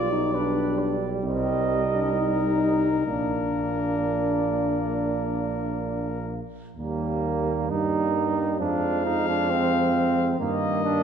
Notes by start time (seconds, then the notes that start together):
Already playing: B1 G3 F4 D5
0.12 D#4
0.34 D4 B4
0.79 D5
1.23 C2 C4 A#4 D#5
1.93 D4
2.14 D#4
3.07 A#1 A#3 D4 D5
6.77 D#2 G3 A#3
7.69 G2 G3 A#3 D#4
8.60 F2 F3 G#3 D4 F5
9.05 D#4
9.28 D4
9.50 C4
10.39 G2 D#3 A#3 D#5
10.84 D4